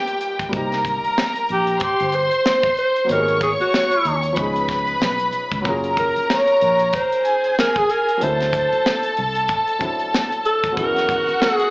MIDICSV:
0, 0, Header, 1, 7, 480
1, 0, Start_track
1, 0, Tempo, 639659
1, 398, Time_signature, 4, 2, 24, 8
1, 8782, End_track
2, 0, Start_track
2, 0, Title_t, "String section"
2, 0, Program_c, 0, 48
2, 0, Note_on_c, 0, 67, 76
2, 0, Note_on_c, 0, 79, 79
2, 380, Note_off_c, 0, 67, 0
2, 380, Note_off_c, 0, 79, 0
2, 399, Note_on_c, 0, 70, 68
2, 400, Note_on_c, 0, 82, 80
2, 1340, Note_off_c, 0, 70, 0
2, 1341, Note_off_c, 0, 82, 0
2, 1356, Note_on_c, 0, 72, 78
2, 1358, Note_on_c, 0, 84, 82
2, 2299, Note_off_c, 0, 72, 0
2, 2300, Note_off_c, 0, 84, 0
2, 2320, Note_on_c, 0, 73, 72
2, 2322, Note_on_c, 0, 85, 83
2, 3261, Note_off_c, 0, 73, 0
2, 3262, Note_off_c, 0, 85, 0
2, 3283, Note_on_c, 0, 71, 71
2, 3283, Note_on_c, 0, 83, 80
2, 4223, Note_off_c, 0, 71, 0
2, 4223, Note_off_c, 0, 83, 0
2, 4245, Note_on_c, 0, 82, 83
2, 4246, Note_on_c, 0, 70, 73
2, 5419, Note_off_c, 0, 82, 0
2, 5420, Note_off_c, 0, 70, 0
2, 5443, Note_on_c, 0, 80, 81
2, 5446, Note_on_c, 0, 68, 68
2, 6147, Note_off_c, 0, 80, 0
2, 6149, Note_off_c, 0, 68, 0
2, 6161, Note_on_c, 0, 69, 79
2, 6161, Note_on_c, 0, 81, 83
2, 8050, Note_off_c, 0, 81, 0
2, 8051, Note_off_c, 0, 69, 0
2, 8084, Note_on_c, 0, 66, 77
2, 8084, Note_on_c, 0, 78, 86
2, 8782, Note_off_c, 0, 66, 0
2, 8782, Note_off_c, 0, 78, 0
2, 8782, End_track
3, 0, Start_track
3, 0, Title_t, "Alto saxophone"
3, 0, Program_c, 1, 65
3, 1142, Note_on_c, 1, 67, 77
3, 1354, Note_off_c, 1, 67, 0
3, 1376, Note_on_c, 1, 67, 84
3, 1613, Note_on_c, 1, 72, 96
3, 1625, Note_off_c, 1, 67, 0
3, 2087, Note_off_c, 1, 72, 0
3, 2091, Note_on_c, 1, 72, 89
3, 2336, Note_on_c, 1, 70, 84
3, 2347, Note_off_c, 1, 72, 0
3, 2568, Note_off_c, 1, 70, 0
3, 2574, Note_on_c, 1, 68, 71
3, 2633, Note_off_c, 1, 68, 0
3, 2709, Note_on_c, 1, 66, 71
3, 3154, Note_off_c, 1, 66, 0
3, 4493, Note_on_c, 1, 70, 77
3, 4710, Note_off_c, 1, 70, 0
3, 4731, Note_on_c, 1, 73, 87
3, 5213, Note_on_c, 1, 72, 94
3, 5224, Note_off_c, 1, 73, 0
3, 5687, Note_off_c, 1, 72, 0
3, 5695, Note_on_c, 1, 70, 78
3, 5836, Note_on_c, 1, 68, 72
3, 5847, Note_off_c, 1, 70, 0
3, 5934, Note_on_c, 1, 70, 79
3, 5945, Note_off_c, 1, 68, 0
3, 6176, Note_on_c, 1, 72, 86
3, 6187, Note_off_c, 1, 70, 0
3, 6888, Note_off_c, 1, 72, 0
3, 7848, Note_on_c, 1, 69, 94
3, 8068, Note_off_c, 1, 69, 0
3, 8083, Note_on_c, 1, 70, 98
3, 8559, Note_on_c, 1, 68, 88
3, 8570, Note_off_c, 1, 70, 0
3, 8782, Note_off_c, 1, 68, 0
3, 8782, End_track
4, 0, Start_track
4, 0, Title_t, "Grand piano"
4, 0, Program_c, 2, 0
4, 0, Control_c, 2, 64, 127
4, 0, Note_on_c, 2, 55, 67
4, 0, Note_on_c, 2, 58, 62
4, 0, Note_on_c, 2, 59, 57
4, 0, Note_on_c, 2, 63, 61
4, 0, Note_on_c, 2, 65, 76
4, 357, Note_off_c, 2, 55, 0
4, 368, Note_on_c, 2, 55, 68
4, 370, Note_off_c, 2, 58, 0
4, 377, Note_off_c, 2, 59, 0
4, 382, Note_on_c, 2, 58, 60
4, 385, Note_off_c, 2, 63, 0
4, 393, Note_off_c, 2, 65, 0
4, 397, Note_on_c, 2, 60, 60
4, 409, Control_c, 2, 64, 0
4, 411, Note_on_c, 2, 63, 59
4, 426, Note_on_c, 2, 67, 70
4, 553, Control_c, 2, 64, 127
4, 2275, Note_off_c, 2, 55, 0
4, 2282, Note_off_c, 2, 58, 0
4, 2285, Note_on_c, 2, 54, 57
4, 2289, Note_off_c, 2, 60, 0
4, 2296, Note_off_c, 2, 63, 0
4, 2301, Note_on_c, 2, 58, 49
4, 2304, Note_off_c, 2, 67, 0
4, 2315, Note_on_c, 2, 59, 51
4, 2330, Control_c, 2, 64, 0
4, 2330, Note_on_c, 2, 63, 51
4, 2345, Note_on_c, 2, 67, 51
4, 2389, Note_off_c, 2, 67, 0
4, 2395, Note_on_c, 2, 68, 60
4, 2471, Control_c, 2, 64, 127
4, 3244, Note_off_c, 2, 54, 0
4, 3248, Note_on_c, 2, 53, 65
4, 3252, Note_off_c, 2, 58, 0
4, 3253, Note_off_c, 2, 59, 0
4, 3264, Note_on_c, 2, 59, 59
4, 3266, Note_off_c, 2, 63, 0
4, 3280, Note_on_c, 2, 61, 63
4, 3291, Control_c, 2, 64, 0
4, 3294, Note_on_c, 2, 63, 62
4, 3296, Note_off_c, 2, 68, 0
4, 3307, Note_on_c, 2, 68, 73
4, 3431, Control_c, 2, 64, 127
4, 4205, Note_off_c, 2, 53, 0
4, 4211, Note_on_c, 2, 54, 65
4, 4213, Note_off_c, 2, 59, 0
4, 4221, Note_off_c, 2, 61, 0
4, 4225, Note_on_c, 2, 58, 60
4, 4228, Note_off_c, 2, 63, 0
4, 4235, Note_off_c, 2, 68, 0
4, 4243, Note_on_c, 2, 61, 59
4, 4251, Control_c, 2, 64, 0
4, 4256, Note_on_c, 2, 65, 58
4, 4269, Note_on_c, 2, 68, 71
4, 4392, Control_c, 2, 64, 127
4, 6116, Note_off_c, 2, 54, 0
4, 6123, Note_off_c, 2, 58, 0
4, 6132, Note_off_c, 2, 61, 0
4, 6134, Note_on_c, 2, 54, 55
4, 6138, Note_off_c, 2, 65, 0
4, 6145, Note_off_c, 2, 68, 0
4, 6145, Note_on_c, 2, 60, 53
4, 6162, Note_on_c, 2, 62, 51
4, 6169, Control_c, 2, 64, 0
4, 6176, Note_on_c, 2, 64, 55
4, 6189, Note_on_c, 2, 69, 61
4, 6306, Control_c, 2, 64, 127
4, 7323, Note_off_c, 2, 54, 0
4, 7329, Note_off_c, 2, 60, 0
4, 7337, Note_off_c, 2, 62, 0
4, 7344, Note_off_c, 2, 64, 0
4, 7346, Note_on_c, 2, 54, 54
4, 7351, Note_off_c, 2, 69, 0
4, 7353, Note_on_c, 2, 60, 49
4, 7360, Note_on_c, 2, 62, 48
4, 7368, Note_on_c, 2, 64, 49
4, 7374, Note_on_c, 2, 69, 60
4, 8032, Note_off_c, 2, 54, 0
4, 8044, Note_on_c, 2, 54, 56
4, 8059, Note_on_c, 2, 59, 53
4, 8076, Note_on_c, 2, 61, 53
4, 8077, Note_off_c, 2, 60, 0
4, 8077, Note_off_c, 2, 64, 0
4, 8080, Note_off_c, 2, 62, 0
4, 8087, Note_off_c, 2, 69, 0
4, 8088, Note_on_c, 2, 64, 51
4, 8089, Control_c, 2, 64, 0
4, 8104, Note_on_c, 2, 68, 66
4, 8241, Control_c, 2, 64, 127
4, 8782, Note_off_c, 2, 54, 0
4, 8782, Note_off_c, 2, 59, 0
4, 8782, Note_off_c, 2, 61, 0
4, 8782, Note_off_c, 2, 64, 0
4, 8782, Note_off_c, 2, 68, 0
4, 8782, End_track
5, 0, Start_track
5, 0, Title_t, "Fingered electric bass"
5, 0, Program_c, 3, 33
5, 401, Note_on_c, 3, 36, 92
5, 740, Note_off_c, 3, 36, 0
5, 1127, Note_on_c, 3, 34, 78
5, 1338, Note_off_c, 3, 34, 0
5, 1505, Note_on_c, 3, 31, 79
5, 1717, Note_off_c, 3, 31, 0
5, 2323, Note_on_c, 3, 32, 99
5, 2661, Note_off_c, 3, 32, 0
5, 3041, Note_on_c, 3, 39, 75
5, 3255, Note_off_c, 3, 39, 0
5, 3285, Note_on_c, 3, 37, 83
5, 3712, Note_off_c, 3, 37, 0
5, 3767, Note_on_c, 3, 35, 71
5, 3979, Note_off_c, 3, 35, 0
5, 4143, Note_on_c, 3, 37, 71
5, 4232, Note_off_c, 3, 37, 0
5, 4244, Note_on_c, 3, 30, 89
5, 4582, Note_off_c, 3, 30, 0
5, 4969, Note_on_c, 3, 34, 72
5, 5180, Note_off_c, 3, 34, 0
5, 6172, Note_on_c, 3, 38, 89
5, 6506, Note_off_c, 3, 38, 0
5, 6892, Note_on_c, 3, 36, 74
5, 7102, Note_off_c, 3, 36, 0
5, 8085, Note_on_c, 3, 40, 97
5, 8422, Note_off_c, 3, 40, 0
5, 8782, End_track
6, 0, Start_track
6, 0, Title_t, "Muted fingered electric bass strokes"
6, 785, Note_on_c, 9, 29, 39
6, 860, Note_off_c, 9, 29, 0
6, 2703, Note_on_c, 9, 29, 39
6, 2778, Note_off_c, 9, 29, 0
6, 4630, Note_on_c, 9, 29, 39
6, 4705, Note_off_c, 9, 29, 0
6, 6550, Note_on_c, 9, 29, 41
6, 6625, Note_off_c, 9, 29, 0
6, 8470, Note_on_c, 9, 29, 40
6, 8545, Note_off_c, 9, 29, 0
6, 8782, End_track
7, 0, Start_track
7, 0, Title_t, "Drums"
7, 56, Note_on_c, 9, 42, 51
7, 131, Note_off_c, 9, 42, 0
7, 156, Note_on_c, 9, 42, 59
7, 231, Note_off_c, 9, 42, 0
7, 296, Note_on_c, 9, 36, 75
7, 299, Note_on_c, 9, 42, 46
7, 371, Note_off_c, 9, 36, 0
7, 375, Note_off_c, 9, 42, 0
7, 397, Note_on_c, 9, 36, 97
7, 397, Note_on_c, 9, 42, 76
7, 472, Note_off_c, 9, 42, 0
7, 473, Note_off_c, 9, 36, 0
7, 541, Note_on_c, 9, 42, 42
7, 547, Note_on_c, 9, 38, 30
7, 616, Note_off_c, 9, 42, 0
7, 622, Note_off_c, 9, 38, 0
7, 636, Note_on_c, 9, 36, 74
7, 641, Note_on_c, 9, 42, 66
7, 711, Note_off_c, 9, 36, 0
7, 716, Note_off_c, 9, 42, 0
7, 783, Note_on_c, 9, 42, 43
7, 858, Note_off_c, 9, 42, 0
7, 885, Note_on_c, 9, 38, 99
7, 960, Note_off_c, 9, 38, 0
7, 1016, Note_on_c, 9, 42, 50
7, 1091, Note_off_c, 9, 42, 0
7, 1118, Note_on_c, 9, 42, 56
7, 1193, Note_off_c, 9, 42, 0
7, 1254, Note_on_c, 9, 42, 50
7, 1329, Note_off_c, 9, 42, 0
7, 1350, Note_on_c, 9, 42, 79
7, 1359, Note_on_c, 9, 36, 78
7, 1426, Note_off_c, 9, 42, 0
7, 1434, Note_off_c, 9, 36, 0
7, 1499, Note_on_c, 9, 42, 47
7, 1574, Note_off_c, 9, 42, 0
7, 1592, Note_on_c, 9, 42, 57
7, 1667, Note_off_c, 9, 42, 0
7, 1736, Note_on_c, 9, 42, 41
7, 1811, Note_off_c, 9, 42, 0
7, 1844, Note_on_c, 9, 38, 96
7, 1919, Note_off_c, 9, 38, 0
7, 1977, Note_on_c, 9, 36, 86
7, 1979, Note_on_c, 9, 42, 50
7, 2052, Note_off_c, 9, 36, 0
7, 2054, Note_off_c, 9, 42, 0
7, 2080, Note_on_c, 9, 42, 54
7, 2155, Note_off_c, 9, 42, 0
7, 2221, Note_on_c, 9, 42, 47
7, 2296, Note_off_c, 9, 42, 0
7, 2320, Note_on_c, 9, 42, 78
7, 2395, Note_off_c, 9, 42, 0
7, 2463, Note_on_c, 9, 42, 42
7, 2538, Note_off_c, 9, 42, 0
7, 2558, Note_on_c, 9, 36, 79
7, 2564, Note_on_c, 9, 42, 66
7, 2634, Note_off_c, 9, 36, 0
7, 2639, Note_off_c, 9, 42, 0
7, 2705, Note_on_c, 9, 42, 38
7, 2780, Note_off_c, 9, 42, 0
7, 2807, Note_on_c, 9, 38, 99
7, 2883, Note_off_c, 9, 38, 0
7, 2935, Note_on_c, 9, 42, 49
7, 3010, Note_off_c, 9, 42, 0
7, 3040, Note_on_c, 9, 42, 56
7, 3115, Note_off_c, 9, 42, 0
7, 3174, Note_on_c, 9, 42, 50
7, 3249, Note_off_c, 9, 42, 0
7, 3273, Note_on_c, 9, 42, 78
7, 3281, Note_on_c, 9, 36, 77
7, 3348, Note_off_c, 9, 42, 0
7, 3356, Note_off_c, 9, 36, 0
7, 3419, Note_on_c, 9, 42, 47
7, 3495, Note_off_c, 9, 42, 0
7, 3514, Note_on_c, 9, 42, 55
7, 3517, Note_on_c, 9, 36, 74
7, 3525, Note_on_c, 9, 38, 31
7, 3589, Note_off_c, 9, 42, 0
7, 3592, Note_off_c, 9, 36, 0
7, 3600, Note_off_c, 9, 38, 0
7, 3656, Note_on_c, 9, 42, 40
7, 3731, Note_off_c, 9, 42, 0
7, 3765, Note_on_c, 9, 38, 91
7, 3840, Note_off_c, 9, 38, 0
7, 3897, Note_on_c, 9, 42, 48
7, 3972, Note_off_c, 9, 42, 0
7, 3995, Note_on_c, 9, 42, 53
7, 4070, Note_off_c, 9, 42, 0
7, 4139, Note_on_c, 9, 36, 76
7, 4139, Note_on_c, 9, 42, 48
7, 4214, Note_off_c, 9, 36, 0
7, 4214, Note_off_c, 9, 42, 0
7, 4237, Note_on_c, 9, 42, 72
7, 4241, Note_on_c, 9, 36, 100
7, 4312, Note_off_c, 9, 42, 0
7, 4316, Note_off_c, 9, 36, 0
7, 4381, Note_on_c, 9, 42, 42
7, 4456, Note_off_c, 9, 42, 0
7, 4480, Note_on_c, 9, 36, 82
7, 4483, Note_on_c, 9, 42, 64
7, 4555, Note_off_c, 9, 36, 0
7, 4558, Note_off_c, 9, 42, 0
7, 4624, Note_on_c, 9, 42, 42
7, 4699, Note_off_c, 9, 42, 0
7, 4728, Note_on_c, 9, 38, 95
7, 4803, Note_off_c, 9, 38, 0
7, 4857, Note_on_c, 9, 42, 50
7, 4932, Note_off_c, 9, 42, 0
7, 4962, Note_on_c, 9, 42, 56
7, 5037, Note_off_c, 9, 42, 0
7, 5097, Note_on_c, 9, 42, 49
7, 5172, Note_off_c, 9, 42, 0
7, 5198, Note_on_c, 9, 42, 83
7, 5204, Note_on_c, 9, 36, 78
7, 5273, Note_off_c, 9, 42, 0
7, 5279, Note_off_c, 9, 36, 0
7, 5346, Note_on_c, 9, 42, 48
7, 5421, Note_off_c, 9, 42, 0
7, 5439, Note_on_c, 9, 42, 60
7, 5515, Note_off_c, 9, 42, 0
7, 5583, Note_on_c, 9, 42, 40
7, 5658, Note_off_c, 9, 42, 0
7, 5693, Note_on_c, 9, 38, 90
7, 5768, Note_off_c, 9, 38, 0
7, 5822, Note_on_c, 9, 36, 87
7, 5826, Note_on_c, 9, 42, 48
7, 5897, Note_off_c, 9, 36, 0
7, 5901, Note_off_c, 9, 42, 0
7, 5924, Note_on_c, 9, 42, 53
7, 5999, Note_off_c, 9, 42, 0
7, 6067, Note_on_c, 9, 42, 47
7, 6142, Note_off_c, 9, 42, 0
7, 6163, Note_on_c, 9, 42, 80
7, 6238, Note_off_c, 9, 42, 0
7, 6306, Note_on_c, 9, 42, 42
7, 6312, Note_on_c, 9, 38, 32
7, 6381, Note_off_c, 9, 42, 0
7, 6387, Note_off_c, 9, 38, 0
7, 6401, Note_on_c, 9, 36, 79
7, 6406, Note_on_c, 9, 42, 62
7, 6476, Note_off_c, 9, 36, 0
7, 6481, Note_off_c, 9, 42, 0
7, 6548, Note_on_c, 9, 42, 40
7, 6623, Note_off_c, 9, 42, 0
7, 6649, Note_on_c, 9, 38, 95
7, 6724, Note_off_c, 9, 38, 0
7, 6777, Note_on_c, 9, 42, 49
7, 6852, Note_off_c, 9, 42, 0
7, 6880, Note_on_c, 9, 42, 57
7, 6955, Note_off_c, 9, 42, 0
7, 7017, Note_on_c, 9, 42, 52
7, 7092, Note_off_c, 9, 42, 0
7, 7115, Note_on_c, 9, 42, 80
7, 7122, Note_on_c, 9, 36, 81
7, 7190, Note_off_c, 9, 42, 0
7, 7197, Note_off_c, 9, 36, 0
7, 7261, Note_on_c, 9, 42, 46
7, 7336, Note_off_c, 9, 42, 0
7, 7358, Note_on_c, 9, 42, 60
7, 7359, Note_on_c, 9, 36, 77
7, 7433, Note_off_c, 9, 42, 0
7, 7434, Note_off_c, 9, 36, 0
7, 7499, Note_on_c, 9, 42, 40
7, 7574, Note_off_c, 9, 42, 0
7, 7612, Note_on_c, 9, 38, 97
7, 7687, Note_off_c, 9, 38, 0
7, 7746, Note_on_c, 9, 42, 51
7, 7821, Note_off_c, 9, 42, 0
7, 7844, Note_on_c, 9, 42, 54
7, 7919, Note_off_c, 9, 42, 0
7, 7982, Note_on_c, 9, 36, 78
7, 7987, Note_on_c, 9, 42, 49
7, 8057, Note_off_c, 9, 36, 0
7, 8062, Note_off_c, 9, 42, 0
7, 8083, Note_on_c, 9, 36, 100
7, 8085, Note_on_c, 9, 42, 75
7, 8158, Note_off_c, 9, 36, 0
7, 8160, Note_off_c, 9, 42, 0
7, 8228, Note_on_c, 9, 42, 40
7, 8234, Note_on_c, 9, 38, 30
7, 8303, Note_off_c, 9, 42, 0
7, 8309, Note_off_c, 9, 38, 0
7, 8320, Note_on_c, 9, 36, 78
7, 8327, Note_on_c, 9, 42, 65
7, 8395, Note_off_c, 9, 36, 0
7, 8402, Note_off_c, 9, 42, 0
7, 8468, Note_on_c, 9, 42, 42
7, 8543, Note_off_c, 9, 42, 0
7, 8567, Note_on_c, 9, 38, 97
7, 8642, Note_off_c, 9, 38, 0
7, 8698, Note_on_c, 9, 42, 48
7, 8774, Note_off_c, 9, 42, 0
7, 8782, End_track
0, 0, End_of_file